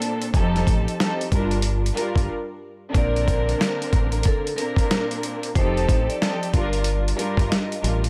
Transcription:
Already playing: string section A#2 A#3 C4 D4 A4
0.02 closed hi-hat
0.22 closed hi-hat
0.34 fingered electric bass F1, string section F3 C4 D#4 G4 A4, kick, closed hi-hat
0.56 snare, closed hi-hat
0.67 fingered electric bass A1, kick, closed hi-hat
0.88 closed hi-hat
1.00 string section F3 C4 D#4 G4 A4, snare, closed hi-hat
1.21 closed hi-hat
1.32 fingered electric bass G1, string section G2 G3 D4 F4 A#4, kick, closed hi-hat
1.51 closed hi-hat
1.62 closed hi-hat
1.86 closed hi-hat
1.94 string section G2 G3 D4 F4 A#4, closed hi-hat
2.16 fingered electric bass G1, kick, closed hi-hat
2.92 fingered electric bass A#1, string section D3 A#3 C4 D4 A#4, kick, closed hi-hat
2.97 vibraphone D5
3.16 closed hi-hat
3.28 kick, closed hi-hat
3.49 vibraphone A#4, closed hi-hat
3.61 snare, closed hi-hat
3.82 closed hi-hat
3.93 fingered electric bass A1, kick, closed hi-hat
4.12 closed hi-hat
4.23 vibraphone A4, kick, closed hi-hat
4.47 closed hi-hat
4.56 string section A#2 A#3 C4 D4 A#4, vibraphone A#4, closed hi-hat
4.76 kick, closed hi-hat
4.91 snare, closed hi-hat
5.11 closed hi-hat
5.23 closed hi-hat
5.43 closed hi-hat
5.55 fingered electric bass F1, string section F3 C4 D#4 G4 A4, vibraphone C5, kick, closed hi-hat
5.77 closed hi-hat
5.89 fingered electric bass A1, kick, closed hi-hat
6.09 vibraphone D5, closed hi-hat
6.22 string section F3 C4 D#4 G4 A4, snare, closed hi-hat
6.43 closed hi-hat
6.53 fingered electric bass G1, string section G2 G3 D4 F4 A#4, kick, closed hi-hat
6.73 closed hi-hat
6.84 closed hi-hat
7.08 closed hi-hat
7.16 string section G2 G3 D4 F4 A#4, closed hi-hat
7.37 fingered electric bass G1, kick, closed hi-hat
7.50 vibraphone D#5, snare, closed hi-hat
7.72 closed hi-hat
7.82 fingered electric bass A1, string section G2 G3 D4 F4 A#4, closed hi-hat
8.04 closed hi-hat

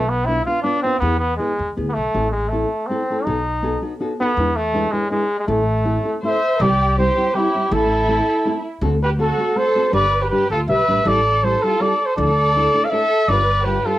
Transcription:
Already playing: upright bass B1, trumpet A3
0.09 trumpet B3
0.26 nylon-string guitar B3 D4 F4 B4, trumpet E4
0.45 nylon-string guitar B3 D4 F4 B4, trumpet F4
0.62 nylon-string guitar B3 D4 F4 B4, trumpet D4
0.82 nylon-string guitar B3 D4 F4 B4, trumpet C4
0.99 upright bass E2, nylon-string guitar E3 B3 E4 G#4, trumpet B3
1.03 nylon-string guitar B4
1.19 trumpet B3
1.37 trumpet G#3, nylon-string guitar B3 E4 G#4 B4
1.59 upright bass E2
1.76 upright bass D2, nylon-string guitar B3 E4 G#4 B4
1.89 trumpet B3
1.94 upright bass B1, trumpet A3
2.14 upright bass A1, nylon-string guitar A2 E3 A3 C4 E4 A4
2.31 trumpet G#3
2.49 trumpet A3, nylon-string guitar A3 C4
2.53 nylon-string guitar E4 A4
2.87 nylon-string guitar A3 C4 E4, trumpet C4
2.91 nylon-string guitar A4
3.10 nylon-string guitar A3 C4 E4 A4
3.24 upright bass B1, nylon-string guitar B3 D#4 F#4 A4, trumpet D#4
3.62 nylon-string guitar B3 D#4 F#4 A4
3.81 nylon-string guitar B3 D#4 F#4 A4
4.00 nylon-string guitar B3 D#4 F#4 A4
4.20 trumpet B3, nylon-string guitar B3 D#4 F#4 A4
4.37 upright bass E2, nylon-string guitar E3 G#3 D4 E4 B4
4.56 trumpet A3
4.73 nylon-string guitar G#3 D4 E4 B4
4.92 trumpet G#3, nylon-string guitar G#3 D4 E4 B4
5.10 nylon-string guitar G#3 D4 E4 B4, trumpet G#3
5.39 trumpet G#3
5.47 upright bass A1, nylon-string guitar A2 E3 A3 C4 E4 A4, trumpet A3
5.84 nylon-string guitar A3 C4 E4 A4
6.03 nylon-string guitar A3 C4 E4 A4
6.23 nylon-string guitar A3 C4 E4 A4, violin section C5, trumpet E5
6.60 upright bass C2, nylon-string guitar C3 E3 G3 C4 E4 C5, violin section G4, trumpet D5
6.98 nylon-string guitar G3 C4 E4 C5, violin section G4, trumpet C5
7.17 nylon-string guitar G3 C4 E4 C5
7.34 nylon-string guitar G3 C4 E4 C5, violin section E4, trumpet G4
7.54 nylon-string guitar G3 C4 E4 C5
7.71 upright bass A1, nylon-string guitar A2 E3 A3 C4 E4 A4, violin section E4, trumpet A4
8.08 nylon-string guitar A3 C4 E4 A4
8.45 nylon-string guitar A3 C4 E4 A4
8.81 upright bass D2, nylon-string guitar D3 A3 C4 F#4 A4
9.03 violin section G4, trumpet B4
9.18 nylon-string guitar A3 C4 F#4 A4, violin section F#4, trumpet A4
9.37 nylon-string guitar A3 C4 F#4 A4
9.56 nylon-string guitar A3 C4 F#4 A4, violin section A4, trumpet C5
9.75 nylon-string guitar A3 C4 F#4 A4
9.92 upright bass G1, nylon-string guitar G3 D4 G4 B4, violin section B4, trumpet D5
10.22 violin section G4, trumpet B4
10.30 nylon-string guitar G3 D4 G4 B4, violin section G4, trumpet B4
10.50 upright bass D2, violin section F4, trumpet A4
10.68 upright bass B1, nylon-string guitar G3 D4 G4 B4, violin section B4, trumpet E5
10.88 upright bass A1, nylon-string guitar G3 D4 G4 B4
11.05 upright bass A1, nylon-string guitar A2 E3 G3 C4 E4 A4, violin section A4, trumpet D5
11.43 nylon-string guitar G3 C4 E4 A4, violin section A4, trumpet C5
11.63 nylon-string guitar G3 C4 E4 A4, violin section F4, trumpet A4
11.80 nylon-string guitar G3 C4 E4 A4, violin section A4, trumpet D5
12.06 violin section A4, trumpet C5
12.17 upright bass D2, nylon-string guitar D3 F3 A3 D4 E4 A4, violin section A4, trumpet D5
12.55 nylon-string guitar A3 D4 E4 A4
12.74 nylon-string guitar A3 D4 E4 A4
12.84 violin section D5, trumpet F5
12.90 nylon-string guitar A3 D4 E4 A4, violin section A4, trumpet E5
13.28 upright bass G1, nylon-string guitar G3 D4 F4 B4, violin section B4, trumpet D5
13.64 nylon-string guitar G3 D4 F4 B4, violin section G4, trumpet B4
13.85 nylon-string guitar G3 D4 F4 B4, violin section F4, trumpet A4

